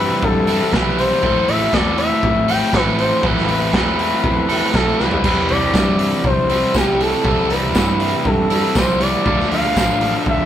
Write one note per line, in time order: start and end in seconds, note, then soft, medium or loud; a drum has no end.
0.00 0.10 G2 medium
0.00 0.72 E3 medium
0.00 0.49 G3 medium
0.00 0.71 G3 medium
0.00 0.48 C4 medium
0.00 0.49 C4 medium
0.00 0.47 E4 medium
0.00 0.23 B4 loud
0.23 0.61 G2 medium
0.23 0.74 A4 loud
0.23 kick loud
0.47 0.72 G3 medium
0.47 0.73 C4 medium
0.47 0.73 E4 medium
0.47 open hi-hat medium
0.72 1.11 B1 loud
0.72 1.21 C3 medium
0.72 1.23 E3 medium
0.72 1.21 G3 loud
0.72 1.24 C4 loud
0.72 1.24 E4 loud
0.72 1.00 B4 loud
0.72 kick loud
0.72 snare loud
0.98 1.21 C4 medium
0.98 1.23 E4 medium
0.98 1.50 C5 loud
0.98 open hi-hat medium
1.23 1.42 A1 medium
1.23 2.72 A2 medium
1.23 1.73 E3 medium
1.23 1.50 A3 loud
1.23 1.48 C4 loud
1.23 1.47 E4 loud
1.23 1.74 A4 loud
1.23 kick loud
1.48 1.67 A1 medium
1.48 1.74 A3 medium
1.48 1.74 C4 medium
1.48 1.75 E4 medium
1.48 1.75 E5 loud
1.48 open hi-hat medium
1.73 2.11 E2 medium
1.73 2.73 E3 medium
1.73 1.99 A3 medium
1.73 1.99 C4 medium
1.73 1.97 E4 medium
1.73 2.47 A4 medium
1.73 1.97 D5 loud
1.73 kick loud
1.73 snare loud
1.98 2.49 A3 medium
1.98 2.49 C4 medium
1.98 2.47 E4 medium
1.98 2.51 E5 loud
1.98 open hi-hat medium
2.23 2.61 A1 medium
2.23 kick loud
2.48 2.73 A3 medium
2.48 2.74 C4 medium
2.48 2.75 E4 medium
2.48 2.74 A4 medium
2.48 2.76 G5 loud
2.48 open hi-hat medium
2.73 3.11 A1 medium
2.73 3.21 A2 loud
2.73 3.22 E3 loud
2.73 3.22 A3 loud
2.73 3.23 C4 loud
2.73 3.24 E4 loud
2.73 2.97 A4 loud
2.73 3.01 B4 loud
2.73 kick loud
2.73 snare loud
2.98 3.23 E4 medium
2.98 3.24 A4 medium
2.98 3.24 C5 loud
2.98 open hi-hat medium
3.22 3.73 A1 loud
3.22 3.73 A2 loud
3.22 3.73 E3 medium
3.22 3.48 A3 loud
3.22 3.49 C4 loud
3.22 3.47 E4 loud
3.22 3.75 A4 loud
3.22 4.76 B4 loud
3.22 kick loud
3.37 snare soft
3.47 3.73 A3 medium
3.47 3.74 C4 medium
3.47 3.75 E4 medium
3.47 open hi-hat medium
3.73 4.11 E2 medium
3.73 4.73 E3 medium
3.73 3.98 A3 medium
3.73 3.99 C4 medium
3.73 3.98 E4 medium
3.73 4.48 A4 medium
3.73 kick loud
3.73 snare loud
3.98 4.50 A3 medium
3.98 4.50 C4 medium
3.98 4.49 E4 medium
3.98 open hi-hat medium
4.24 4.62 E2 medium
4.24 kick loud
4.49 4.73 A3 medium
4.49 4.74 C4 medium
4.49 4.75 E4 medium
4.49 4.74 A4 medium
4.49 open hi-hat medium
4.73 4.93 B1 medium
4.73 4.97 A2 medium
4.73 4.99 E3 medium
4.73 4.98 A3 medium
4.73 4.98 C4 loud
4.73 4.97 E4 loud
4.73 5.01 A4 loud
4.73 4.98 A4 loud
4.73 kick loud
4.73 snare loud
4.98 5.37 C2 medium
4.98 5.23 C3 medium
4.98 5.24 E3 medium
4.98 5.24 G3 medium
4.98 5.24 C4 medium
4.98 5.25 E4 medium
4.98 5.52 B4 loud
4.98 snare medium
5.11 floor tom medium
5.23 6.72 C3 medium
5.23 5.73 E3 loud
5.23 5.50 G3 loud
5.23 5.50 C4 medium
5.23 5.49 E4 medium
5.23 kick loud
5.23 crash loud
5.49 5.69 C2 medium
5.49 5.74 G3 medium
5.49 5.75 C4 medium
5.49 5.75 E4 medium
5.49 6.25 D5 loud
5.49 open hi-hat medium
5.74 6.12 G2 medium
5.74 6.73 E3 medium
5.74 6.00 G3 medium
5.74 5.99 C4 medium
5.74 5.98 E4 medium
5.74 kick loud
5.74 snare loud
5.74 tambourine loud
5.98 6.49 G3 medium
5.98 6.48 C4 medium
5.98 6.48 E4 medium
5.98 open hi-hat medium
6.24 6.62 C2 loud
6.24 6.78 C5 loud
6.24 kick loud
6.48 6.72 G3 medium
6.48 6.73 C4 medium
6.48 6.74 E4 medium
6.48 open hi-hat medium
6.72 7.13 C2 medium
6.72 7.22 C3 medium
6.72 7.23 E3 medium
6.72 7.23 G3 medium
6.72 7.23 C4 loud
6.72 7.25 E4 loud
6.72 kick loud
6.72 snare loud
6.72 tambourine loud
6.76 7.03 G4 loud
6.99 7.24 C4 medium
6.99 7.26 E4 medium
6.99 7.52 A4 loud
6.99 open hi-hat medium
7.23 7.75 C2 loud
7.23 7.74 C3 medium
7.23 7.73 E3 medium
7.23 7.49 G3 medium
7.23 7.48 C4 medium
7.23 7.48 E4 loud
7.23 kick loud
7.48 7.73 G3 medium
7.48 7.74 C4 medium
7.48 7.75 E4 medium
7.48 8.27 B4 loud
7.48 open hi-hat medium
7.73 8.13 G2 medium
7.73 8.75 E3 medium
7.73 8.00 G3 medium
7.73 7.99 C4 medium
7.73 7.99 E4 medium
7.73 kick loud
7.73 snare loud
7.73 tambourine loud
7.99 8.51 G3 medium
7.99 8.50 C4 medium
7.99 8.49 E4 medium
7.99 open hi-hat medium
8.25 8.64 G2 loud
8.25 8.78 A4 medium
8.25 kick loud
8.50 8.74 G3 medium
8.50 8.75 C4 medium
8.50 8.76 E4 medium
8.50 open hi-hat medium
8.75 9.14 C2 medium
8.75 9.24 C3 loud
8.75 9.25 E3 loud
8.75 9.24 G3 loud
8.75 9.25 C4 loud
8.75 9.27 E4 loud
8.75 9.03 C5 loud
8.75 kick loud
8.75 snare loud
8.75 tambourine loud
9.00 9.25 C4 medium
9.00 9.27 E4 medium
9.00 9.52 D5 loud
9.00 open hi-hat medium
9.25 9.45 D2 loud
9.25 9.74 D3 medium
9.25 9.75 F3 loud
9.25 9.52 A3 medium
9.25 9.50 D4 loud
9.25 9.49 F4 loud
9.25 kick loud
9.40 snare soft
9.51 9.71 D2 medium
9.51 9.75 A3 medium
9.51 9.76 D4 medium
9.51 9.76 F4 medium
9.51 10.23 F5 loud
9.51 open hi-hat medium
9.75 10.14 A1 medium
9.75 10.26 D3 medium
9.75 10.45 F3 medium
9.75 10.03 A3 medium
9.75 10.01 D4 medium
9.75 10.00 F4 medium
9.75 kick loud
9.75 snare loud
9.75 tambourine loud
10.01 10.45 A3 medium
10.01 10.45 D4 medium
10.01 10.45 F4 medium
10.01 open hi-hat medium
10.26 10.45 D2 medium
10.26 10.45 E5 loud
10.26 kick loud